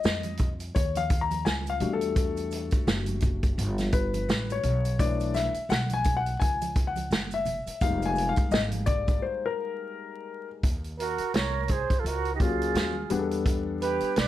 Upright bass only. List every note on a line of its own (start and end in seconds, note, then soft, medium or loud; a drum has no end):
0.04 0.72 F2 medium
0.76 1.43 D#2 medium
1.45 1.79 C#2 loud
1.80 2.68 E2 loud
2.72 muted upright bass stroke soft
2.87 3.54 F#1 loud
3.58 4.25 G1 loud
4.29 4.62 A1 medium
4.63 5.50 B1 loud
5.54 muted upright bass stroke soft
5.69 6.36 B1 medium
6.41 7.08 C#2 medium
7.11 7.63 F#1 medium
7.66 muted upright bass stroke soft
7.81 8.34 F1 loud
8.51 9.18 G#1 medium
10.63 11.16 D#2 loud
11.19 muted upright bass stroke soft
11.34 11.87 C2 medium
12.04 12.72 C#2 medium
12.75 13.08 D#2 medium
13.11 13.98 E2 loud
14.02 muted upright bass stroke soft
14.17 14.28 B1 medium